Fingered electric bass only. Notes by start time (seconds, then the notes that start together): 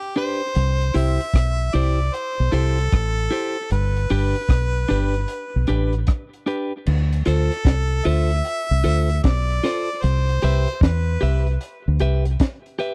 0.56 C2
0.95 C2
1.35 B1
1.75 C2
2.40 B1
2.53 C2
2.93 A1
3.71 G1
4.11 G1
4.49 B1
4.91 G1
5.56 B1
5.70 A1
6.87 D2
7.27 D2
7.65 C2
8.06 D2
8.71 C2
8.85 D2
9.25 B1
10.04 C2
10.44 C2
10.82 E2
11.23 C2
11.88 D2
12.01 C2